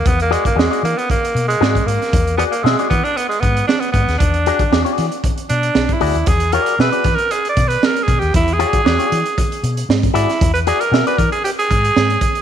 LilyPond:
<<
  \new Staff \with { instrumentName = "Clean electric guitar" } { \time 4/4 \key e \mixolydian \tempo 4 = 116 r8 <fis' gis' d''>16 r16 <fis' gis' d''>16 <fis' gis' d''>16 r4. <fis' gis' d''>16 r8. | r8 <fis' gis' d''>16 r16 <fis' gis' e''>16 <fis' gis' d''>16 r2 r8 | r8 <fis' gis' d''>16 r16 <fis' gis' d''>16 <fis' gis' d''>8 r4. r16 <fis' gis' d''>16 r16 | r8 <fis' gis' d''>8 <fis' gis' e''>16 <fis' gis' d''>16 r2 r8 |
r8 <fis' gis' d''>8 <fis' gis' d''>16 <fis' gis' d''>8 r4. r16 <fis' gis' d''>16 r16 | r8 <fis' gis' d''>16 r16 <fis' gis' e''>16 <fis' gis' d''>16 r2 r8 | }
  \new Staff \with { instrumentName = "Tenor saxophone" } { \time 4/4 \key e \mixolydian b16 ais16 gis16 ais16 gis8 ais16 b16 ais8. gis8. ais8~ | ais8 b16 ais16 gis8 b16 d'16 b16 gis16 b8 d'16 b16 b8 | d'4. r4 d'8~ \tuplet 3/2 { d'8 e'4 } | gis'8 ais'8 \tuplet 3/2 { b'4 ais'8 gis'8 d''8 b'8 ais'8 gis'8 g'8 } |
\tuplet 3/2 { e'8 gis'4~ } gis'4.~ gis'16 r8. e'8~ | e'16 b'16 gis'16 ais'8 b'16 ais'16 gis'16 g'16 gis'4.~ gis'16 | }
  \new Staff \with { instrumentName = "Fingered electric bass" } { \clef bass \time 4/4 \key e \mixolydian e,8. r16 e,16 r16 e16 r8. b,8 gis,8 gis,16 r16 | e,8. r16 b,16 r16 e16 r8. gis,8 r8 gis,16 dis,16 | e,8. r16 e,16 r16 e16 r8. b,8 b,,16 r16 d,16 dis,16 | e,8. r16 b,16 r16 e16 r8. b,8 r8 b,16 dis,16 |
e,8. r16 e,16 r16 e16 r8. b,8 gis,8 gis,16 r16 | e,8. r16 b,16 r16 e16 r8. gis,8 gis,8 r8 | }
  \new DrumStaff \with { instrumentName = "Drums" } \drummode { \time 4/4 <hh bd>16 hh16 hh16 <hh bd>16 sn16 hh16 hh16 hh16 <hh bd>16 hh16 hh16 hh16 sn16 <hh bd>16 hh16 <hh sn>16 | <hh bd>16 hh16 hh16 hh16 sn16 hh16 <hh bd>16 hh16 hh16 hh16 <hh bd>16 hh16 sn16 hh16 <hh bd>16 <hh sn>16 | <hh bd>16 hh16 hh16 <hh bd>16 sn16 hh16 <hh sn>16 hh16 <hh bd>16 hh16 hh16 hh16 sn16 <hh bd>16 hho16 hh16 | <hh bd>16 hh16 hh16 hh16 sn16 hh16 <hh bd sn>16 hh16 hh16 hh16 <hh bd>16 hh16 sn16 hh16 <hh bd>16 hh16 |
<hh bd>16 hh16 hh16 <hh bd>16 sn16 hh16 hh16 hh16 <hh bd>16 hh16 hh16 hh16 sn16 <hh bd>16 hh16 <hh sn>16 | <hh bd>16 hh16 hh16 hh16 sn16 hh16 <hh bd>16 hh16 hh16 hh16 <hh bd>16 hh16 sn16 hh16 <hh bd>16 hh16 | }
>>